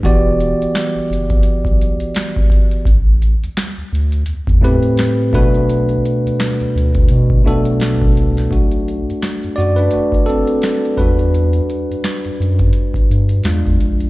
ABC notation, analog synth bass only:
X:1
M:4/4
L:1/16
Q:"Swing 16ths" 1/4=85
K:Em
V:1 name="Analog synth bass" clef=bass
E,,,3 F,,, z F,,, F,,,2 B,,, B,,,2 z4 z | A,,,3 D,, z D,, D,,2 E,, E,,2 z3 B,,,2- | B,,,2 z D,, z D,, D,,2 B,,2 B,,,3 B,,, C,,2 | B,,,3 F,, z F,, F,,2 F,,, F,,,2 z3 E,,2- |
E,,2 z F,, z F,, F,,2 z G,, G,,2 E,, E,, ^A,,,2 |]